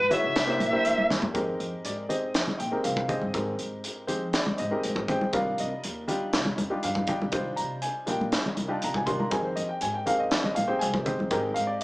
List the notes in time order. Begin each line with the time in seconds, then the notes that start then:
0.00 G#2
0.10 G#3 D#4 E4 F#4 C#5 E5, closed hi-hat, low conga
0.24 C#2
0.36 C2, snare, closed hi-hat
0.46 A#3 D4 E4 G4 C5
0.60 A#1, closed hi-hat, high conga
0.72 A#3 D4 E4 G4 C5
0.85 D2 C5, closed hi-hat
0.98 high conga
1.10 E2, snare, high conga, low conga
1.22 floor tom, high conga
1.34 F2 G#3 C4 D#4 G4 A#4, kick, closed hi-hat
1.60 F2, closed hi-hat
1.85 G#2 D5, closed hi-hat
2.09 G#3 C4 D#4 G4 C5 D#5, closed hi-hat, low conga
2.34 F2, snare, closed hi-hat
2.48 high conga, low conga
2.59 A#2 G5, closed hi-hat
2.71 G#3 C4 D#4 G4 A#4
2.84 C2 F5, closed hi-hat
2.96 kick, high conga
3.08 G#3 C4 D#4 G4 C5 D#5, muted upright bass stroke, kick, closed hi-hat, low conga
3.21 G2, high conga
3.34 G#2 G#3 C4 D#4 G4 A#4, kick, closed hi-hat
3.59 G#2, closed hi-hat
3.84 closed hi-hat
4.07 F3 G#3 C4 D#4 G4 C5, closed hi-hat, low conga
4.33 D5, snare, closed hi-hat
4.47 high conga, low conga
4.58 G#2 D#5, closed hi-hat
4.71 G#3 C4 D#4 G4 A#4
4.83 G#2, closed hi-hat
4.96 kick, high conga
5.08 G#2 G#3 C4 D#4 G4 C5 G5, kick, closed hi-hat, low conga
5.21 muted upright bass stroke, high conga
5.32 C2 G3 D4 D#4 F4 A#4 F5, kick, closed hi-hat
5.58 C2 D#5, closed hi-hat
5.84 D#2, closed hi-hat
6.08 G3 D4 D#4 F4 G4, closed hi-hat, low conga
6.33 C2, snare, closed hi-hat
6.45 high conga, low conga
6.58 F2, closed hi-hat, high conga
6.70 G3 D4 D#4 F4 G4
6.83 G2 F5, closed hi-hat
6.95 kick, high conga
7.07 G3 D4 D#4 F4 G4 G5, muted upright bass stroke, kick, closed hi-hat, low conga
7.22 C2, high conga
7.32 G3 D4 D#4 F4 C5, kick, closed hi-hat
7.56 C3 A#5, closed hi-hat
7.82 G#5, closed hi-hat
8.06 A#2 G3 D4 D#4 F4 A#4 G5, closed hi-hat, low conga
8.21 high conga
8.32 snare, closed hi-hat
8.46 high conga, low conga
8.57 C2, closed hi-hat, high conga
8.68 G3 D4 D#4 F4 G4 A5
8.82 C2 A#5, closed hi-hat
8.94 G#5, kick, high conga
9.06 C3 G3 D4 D#4 F4 A#4 C6, kick, closed hi-hat, low conga
9.19 A#5, muted upright bass stroke, high conga
9.30 F2 G#3 C4 D#4 G4 A#4 G#5, kick, closed hi-hat
9.45 C5
9.56 F2 D#5, closed hi-hat
9.69 G5
9.81 G#2 G#5, closed hi-hat
9.94 G5
10.06 G#3 C4 D#4 G4 A#4 F5, closed hi-hat, low conga
10.19 D#5
10.31 F2 D5, snare, closed hi-hat
10.44 D#5, high conga, low conga
10.55 A#2 F5, closed hi-hat, high conga
10.67 G#3 C4 D#4 G4 C5 G5
10.79 C2 G#5, closed hi-hat
10.94 kick, high conga
11.05 G#3 C4 D#4 G4 C5, muted upright bass stroke, kick, closed hi-hat, low conga
11.19 F2, high conga
11.31 G#2 G#3 C4 D#4 G4 A#4, kick, closed hi-hat
11.54 G#2 F5, closed hi-hat
11.67 D5